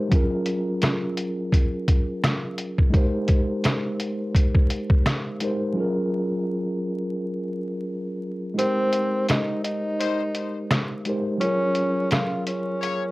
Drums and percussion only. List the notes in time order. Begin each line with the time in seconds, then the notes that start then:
0.11 kick, closed hi-hat
0.46 closed hi-hat
0.82 cross-stick, snare, closed hi-hat
1.17 closed hi-hat
1.52 kick, closed hi-hat
1.88 kick, closed hi-hat
2.24 cross-stick, snare, closed hi-hat
2.58 closed hi-hat
2.78 kick
2.94 kick, closed hi-hat
3.28 kick, closed hi-hat
3.64 cross-stick, snare, closed hi-hat
4.00 closed hi-hat
4.35 kick, closed hi-hat
4.55 kick
4.70 closed hi-hat
4.90 kick
5.06 cross-stick, snare, closed hi-hat
5.40 closed hi-hat
8.59 closed hi-hat
8.93 closed hi-hat
9.29 cross-stick, snare, closed hi-hat
9.64 closed hi-hat
10.01 closed hi-hat
10.35 closed hi-hat
10.71 cross-stick, snare, closed hi-hat
11.05 closed hi-hat
11.41 closed hi-hat
11.75 closed hi-hat
12.11 cross-stick, snare, closed hi-hat
12.47 closed hi-hat
12.83 closed hi-hat